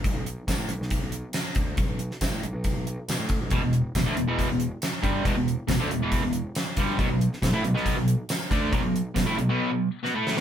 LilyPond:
<<
  \new Staff \with { instrumentName = "Distorted electric guitar" } { \clef bass \time 4/4 \key b \mixolydian \tempo 4 = 138 r1 | r1 | <e, b,>16 <e, b,>8 r16 <e, b,>16 <d a>16 <e, b,>16 <e, b, e>8 <e, b,>8 r8. <g, d g>8 | <e, b,>16 <e, b,>8 r16 <e, b,>16 <d a>16 <e, b,>16 <e, b, e>8 <e, b,>8 r8. <g, d g>8 |
<b, fis>16 <b, fis>8 r16 <b, fis>16 <a e'>16 <b, fis>16 <b, fis b>8 <b, fis>8 r8. <d a d'>8 | <b, fis>16 <b, fis>8 r16 <b, fis>16 <a e'>16 <b, fis>16 <b, fis b>8 <b, fis>8 r16 <b fis'>16 <a e' a'>8 r16 | }
  \new Staff \with { instrumentName = "Picked electric bass" } { \clef bass \time 4/4 \key b \mixolydian b,,16 b,,8 r16 b,,16 a,16 b,,16 b,,8 b,,8 r8. d,8 | b,,16 b,,8 r16 b,,16 a,16 b,,16 b,,8 b,,8 r16 b,16 a,8 b,,16 | e,,16 e,,8 r16 e,,16 d,16 e,,16 e,,8 e,,8 r8. g,,8 | e,,16 e,,8 r16 e,,16 d,16 e,,16 e,,8 e,,8 r8. g,,8 |
b,,16 b,,8 r16 b,,16 a,16 b,,16 b,,8 b,,8 r8. d,8 | b,,16 b,,8 r16 b,,16 a,16 b,,16 b,,16 r2 | }
  \new DrumStaff \with { instrumentName = "Drums" } \drummode { \time 4/4 <hh bd>8 hh8 <hh bd sn tamb>8 hh16 sn16 <hh bd>8 hh8 <hh sn tamb>8 <hh bd>8 | <hh bd>8 hh16 sn16 <hh bd sn tamb>8 hh8 <hh bd>8 hh8 <hh sn tamb>8 <hh bd>8 | <hh bd>8 hh8 <hh bd sn tamb>8 hh8 <hh bd>8 hh8 <hh sn tamb>8 <hh bd>8 | <hh bd>8 hh8 <hh bd sn tamb>8 hh8 <hh bd>8 hh8 <hh sn tamb>8 <hh bd>8 |
<hh bd>8 hh16 sn16 <hh bd sn tamb>8 hh16 sn16 <hh bd>8 hh8 <hh sn tamb>8 <hh bd>8 | <hh bd>8 hh8 <hh bd sn tamb>8 hh8 r4 sn8 sn16 sn16 | }
>>